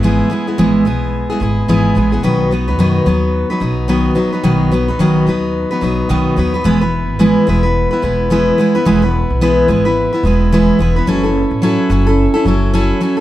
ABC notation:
X:1
M:4/4
L:1/16
Q:"Swing 16ths" 1/4=109
K:E
V:1 name="Steel-string acoustic guitar"
[G,,E,G,B,EG]2 [G,B,EG] [G,B,EG] [G,,E,G,B,EG]2 [G,B,EG]3 [G,B,EG] [G,B,EG]2 [G,,E,G,B,EG]2 [G,B,EG] [G,B,EG] | [B,,D,F,B,DB]2 [F,B,DB] [F,B,DB] [B,,D,F,B,DB]2 [F,B,DB]3 [F,B,DB] [F,B,DB]2 [B,,D,F,B,DB]2 [F,B,DB] [F,B,DB] | [B,,D,F,B,DB]2 [F,B,DB] [F,B,DB] [B,,D,F,B,DB]2 [F,B,DB]3 [F,B,DB] [F,B,DB]2 [B,,D,F,B,DB]2 [F,B,DB] [F,B,DB] | [E,G,B,EB] [B,EB]3 [E,G,B,EB]2 [G,B,EB] [B,EB]2 [B,EB] [G,B,EB]2 [E,G,B,EB]2 [G,B,EB] [B,EB] |
[E,G,B,EB] [B,EB]3 [E,G,B,EB]2 [G,B,EB] [B,EB]2 [B,EB] [G,B,EB]2 [E,G,B,EB]2 [G,B,EB] [B,EB] | [F,CEA] [CEA]3 [F,CEA]2 [F,CEA] [CEA]2 [CEA] [F,CEA]2 [F,CEA]2 [F,CEA] A |]
V:2 name="Upright bass" clef=bass
G,,,2 z2 G,,,2 B,,,3 z G,,,2 G,,,2 A,,,2 | B,,,4 F,,2 D,,3 z B,,,4 z2 | B,,,4 B,,,2 D,,3 z B,,,2 B,,,2 D,,2 | E,,,3 G,,,2 z E,,,3 z E,,,4 z2 |
E,,,3 B,,,3 G,,,3 z E,,,4 E,,,2 | F,,,3 A,,,2 z F,,,3 z F,,,4 z2 |]